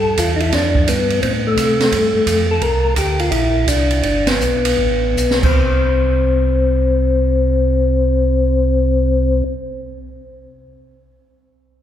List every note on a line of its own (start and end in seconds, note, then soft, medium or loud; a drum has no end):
0.00 0.17 G2 medium
0.00 0.20 A4 loud
0.17 0.51 E2 medium
0.17 0.34 F4 medium
0.17 kick soft
0.17 hi-hat pedal medium
0.17 ride medium
0.36 0.41 D#4 medium
0.40 0.53 E4 medium
0.40 ride soft
0.52 0.86 F2 medium
0.52 0.89 D4 medium
0.52 kick soft
0.52 snare soft
0.52 ride medium
0.75 kick medium
0.87 1.21 G2 medium
0.87 1.20 B3 medium
0.87 kick soft
0.87 hi-hat pedal medium
0.87 ride medium
1.10 ride soft
1.22 1.56 A2 medium
1.22 1.33 C4 medium
1.22 kick soft
1.22 ride medium
1.47 2.46 A3 loud
1.57 1.91 C3 medium
1.57 kick soft
1.57 hi-hat pedal medium
1.57 ride medium
1.80 snare medium
1.80 ride soft
1.92 2.13 G2 medium
1.92 kick soft
1.92 ride medium
2.15 2.21 G2 soft
2.26 2.60 F2 medium
2.26 kick soft
2.26 hi-hat pedal medium
2.26 ride medium
2.51 2.63 A4 medium
2.61 2.95 C2 medium
2.61 2.94 A#4 loud
2.61 kick soft
2.61 ride medium
2.96 3.30 D2 medium
2.96 3.21 G4 medium
2.96 kick soft
2.96 hi-hat pedal medium
2.96 ride medium
3.19 3.31 F4 medium
3.19 ride soft
3.31 3.66 A#1 medium
3.31 3.68 E4 medium
3.31 kick soft
3.31 ride medium
3.67 4.02 C2 medium
3.67 4.03 D4 medium
3.67 kick soft
3.67 hi-hat pedal medium
3.67 ride medium
3.91 ride soft
4.03 4.39 G1 medium
4.03 4.28 D4 medium
4.03 kick soft
4.03 ride medium
4.27 5.39 B3 medium
4.27 snare medium
4.27 ride medium
4.39 4.77 B1 medium
4.39 hi-hat pedal medium
4.65 ride medium
4.78 5.16 A1 medium
4.78 kick soft
5.17 5.42 B1 medium
5.17 hi-hat pedal medium
5.31 snare medium
5.43 9.42 C2 medium
5.43 9.44 C4 medium
5.43 kick medium
5.43 crash medium